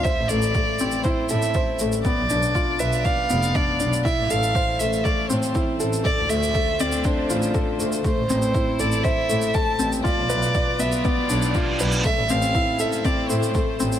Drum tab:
SH |x-xxx-xxx-xxx-xx|x-xxx-xxx-xxx-xx|x-xxx-xxx-xxx-xx|x-xxx-xxx-xxx-xx|
BD |o---o---o---o---|o---o---o---o---|o---o---o---o---|o---o---o---o---|

SH |x-xxx-xxx-xxx-xx|x-xxx-xxx-xxx-xx|x-xxx-xxx-xxx-xx|
BD |o---o---o---o---|o---o---o---o---|o---o---o---o---|